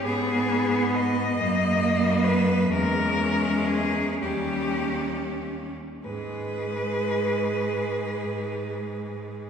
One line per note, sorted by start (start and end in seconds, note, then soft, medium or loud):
0.05 1.37 G#2 loud
0.05 1.36 B3 loud
0.05 0.96 G#4 loud
0.95 2.25 D#5 loud
1.38 2.67 F#2 loud
1.38 2.71 A#3 loud
1.38 2.04 A#3 loud
2.02 2.70 B3 loud
2.24 2.73 B4 loud
2.69 4.22 E2 loud
2.69 4.20 G#3 loud
2.69 4.20 C#4 loud
2.69 3.68 A#4 loud
3.67 4.20 G#4 loud
4.21 5.76 D#2 loud
4.21 5.08 G3 loud
4.21 5.73 C#4 loud
4.21 5.40 G4 loud
6.04 9.50 G#2 loud
6.04 9.50 G#3 loud
6.04 9.50 G#4 medium
6.04 9.50 B4 loud